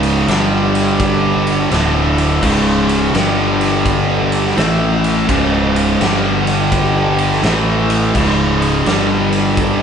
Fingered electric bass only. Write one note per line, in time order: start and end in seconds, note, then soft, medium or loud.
0.00 0.24 C#1 medium
0.28 1.67 G1 medium
1.71 2.38 D1 loud
2.43 3.10 C#1 medium
3.14 4.53 G1 loud
4.57 5.24 A1 loud
5.29 5.96 C#1 medium
6.00 7.39 G1 loud
7.43 8.10 A1 loud
8.15 8.82 C#1 loud
8.86 9.82 G1 loud